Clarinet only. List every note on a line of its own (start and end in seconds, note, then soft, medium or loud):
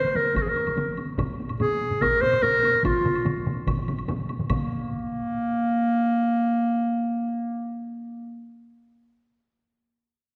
0.00 0.17 C5 medium
0.16 0.36 A#4 medium
0.37 0.43 A#4 medium
0.42 0.50 G#4 medium
0.48 0.99 A#4 medium
1.60 2.03 G#4 medium
2.01 2.23 A#4 medium
2.21 2.44 C5 loud
2.42 2.84 A#4 loud
2.85 3.43 F4 medium
4.50 8.54 A#3 medium